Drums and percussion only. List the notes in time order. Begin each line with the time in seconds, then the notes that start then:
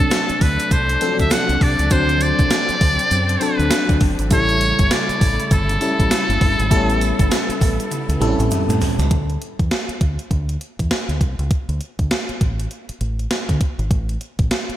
0.11 snare, closed hi-hat, tambourine, shaker
0.29 closed hi-hat, shaker
0.41 kick, open hi-hat, tambourine
0.59 closed hi-hat, shaker
0.71 kick, closed hi-hat, tambourine, shaker
0.89 closed hi-hat, shaker
1.01 closed hi-hat, tambourine, shaker
1.19 kick, closed hi-hat, shaker
1.31 snare, closed hi-hat, tambourine, shaker
1.49 closed hi-hat, shaker
1.61 kick, open hi-hat
1.79 closed hi-hat, shaker
1.90 kick, closed hi-hat, tambourine, shaker
2.09 closed hi-hat, shaker
2.21 closed hi-hat, tambourine
2.39 kick, closed hi-hat, shaker
2.50 snare, closed hi-hat, tambourine, shaker
2.69 closed hi-hat, shaker
2.81 kick, open hi-hat, tambourine
2.99 closed hi-hat, shaker
3.11 closed hi-hat, tambourine, shaker
3.29 closed hi-hat, shaker
3.41 closed hi-hat, tambourine, shaker
3.60 closed hi-hat, shaker
3.71 snare, closed hi-hat, tambourine, shaker
3.89 kick, closed hi-hat, shaker
4.01 kick, open hi-hat
4.19 closed hi-hat, shaker
4.31 kick, closed hi-hat, tambourine, shaker
4.49 closed hi-hat, shaker
4.61 closed hi-hat, tambourine
4.79 kick, closed hi-hat, shaker
4.91 snare, closed hi-hat, tambourine, shaker
5.09 closed hi-hat, shaker
5.21 kick, open hi-hat, tambourine
5.40 closed hi-hat, shaker
5.51 kick, closed hi-hat, tambourine, shaker
5.69 closed hi-hat, shaker
5.81 closed hi-hat, tambourine, shaker
6.00 kick, closed hi-hat, shaker
6.11 snare, closed hi-hat, tambourine, shaker
6.30 closed hi-hat, shaker
6.41 kick, open hi-hat
6.59 closed hi-hat, shaker
6.71 kick, closed hi-hat, tambourine, shaker
6.90 closed hi-hat, shaker
7.01 closed hi-hat, tambourine, shaker
7.19 kick, closed hi-hat, shaker
7.31 snare, closed hi-hat, tambourine, shaker
7.50 closed hi-hat, shaker
7.61 kick, open hi-hat, tambourine, shaker
7.80 closed hi-hat, shaker
7.91 closed hi-hat, high tom, shaker
8.09 closed hi-hat, high tom, shaker
8.21 closed hi-hat, mid tom, shaker
8.40 closed hi-hat, mid tom, shaker
8.51 closed hi-hat, mid tom, shaker
8.69 closed hi-hat, mid tom, shaker
8.81 floor tom, open hi-hat, shaker
8.99 closed hi-hat, floor tom, shaker
9.11 kick, closed hi-hat
9.30 closed hi-hat
9.42 closed hi-hat
9.59 kick, closed hi-hat
9.71 snare, closed hi-hat
9.89 closed hi-hat
10.01 kick, closed hi-hat
10.19 closed hi-hat
10.31 kick, closed hi-hat
10.49 closed hi-hat
10.61 closed hi-hat
10.79 kick, closed hi-hat
10.91 snare, closed hi-hat
11.09 closed hi-hat
11.21 kick, closed hi-hat
11.39 closed hi-hat
11.51 kick, closed hi-hat
11.69 closed hi-hat
11.81 closed hi-hat
11.99 kick, closed hi-hat
12.11 snare, closed hi-hat
12.29 closed hi-hat
12.41 kick, closed hi-hat
12.60 closed hi-hat
12.71 closed hi-hat
12.89 closed hi-hat
13.01 closed hi-hat
13.19 closed hi-hat
13.31 snare, closed hi-hat
13.49 kick, closed hi-hat
13.61 kick, closed hi-hat
13.79 closed hi-hat
13.91 kick, closed hi-hat
14.09 closed hi-hat
14.21 closed hi-hat
14.39 kick, closed hi-hat
14.51 snare, closed hi-hat
14.70 closed hi-hat